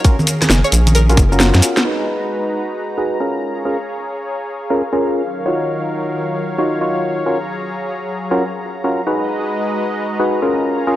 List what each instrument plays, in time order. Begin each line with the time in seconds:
Already playing: analog synth pad A#4 F5, synth pluck C#5
0.04 synth stab C#4 F4 F#4 A#4, analog synth pad C#4 G#4, kick, closed hi-hat, maracas
0.19 high conga, maracas
0.27 closed hi-hat, maracas
0.42 cross-stick, snare, closed hi-hat, high conga, maracas
0.50 analog synth bass F#1, snare, maracas
0.64 synth pluck C#5, maracas
0.72 analog synth bass A#1, closed hi-hat, maracas
0.87 closed hi-hat, high conga, maracas
0.95 synth pluck A#4, closed hi-hat, maracas
1.09 synth stab C#4 F4 F#4 A#4, closed hi-hat, maracas
1.17 analog synth bass F#1, kick, cross-stick, closed hi-hat, maracas
1.32 synth stab C#4 F4 F#4 A#4, maracas
1.40 snare, maracas
1.54 analog synth bass F#2, snare, closed hi-hat, maracas
1.62 closed hi-hat, maracas
1.77 snare, maracas
1.85 analog synth pad G#3 D#4 F#4 B4 A#5, synth stab D#4 F#4 G#4 B4
2.98 synth stab D#4 F#4 G#4 B4
3.20 synth stab C#4 F4 G#4 A#4
3.43 analog synth pad G#4 C#5 F5
3.65 synth stab C#4 F4 G#4 A#4
4.70 synth stab C#4 F4 G#4 A#4
4.93 synth stab C#4 F4 G#4 A#4
5.23 analog synth pad D#3 F#3 A#4 C#5
5.46 synth stab D#4 F4 F#4 C#5
6.58 synth stab D#4 F4 F#4 C#5
6.81 synth stab D#4 F4 F#4 C#5
7.26 analog synth pad F#3 G#4 A#5, synth stab C#4 F4 F#4 A#4
8.31 synth stab C#4 F4 F#4 A#4
8.84 synth stab C#4 F4 F#4 A#4
9.07 analog synth pad G#3 F#4 B4 D#5, synth stab D#4 F#4 G#4 B4
10.20 synth stab D#4 F#4 G#4 B4
10.42 synth stab C#4 F4 G#4 A#4
10.65 analog synth pad G#4 C#5 F5
10.87 synth stab C#4 F4 G#4 A#4